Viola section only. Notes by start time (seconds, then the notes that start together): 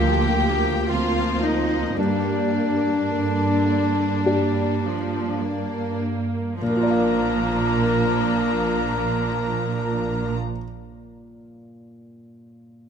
Already playing: F3 A#3
0.91 F3 A#3
1.97 G3 A#3
3.10 D3
4.25 G3
4.85 F3
5.42 A#3
6.61 F3 D4